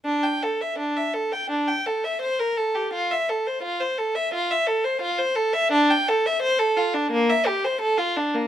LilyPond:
\new Staff \with { instrumentName = "Violin" } { \time 4/4 \key d \minor \tempo 4 = 85 d'16 g''16 a'16 e''16 d'16 e''16 a'16 g''16 d'16 g''16 a'16 e''16 c''16 bes'16 a'16 g'16 | f'16 e''16 a'16 c''16 f'16 c''16 a'16 e''16 f'16 e''16 a'16 c''16 f'16 c''16 a'16 e''16 | d'16 g''16 a'16 e''16 c''16 a'16 f'16 d'16 bes16 e''16 g'16 c''16 a'16 f'16 d'16 bes16 | }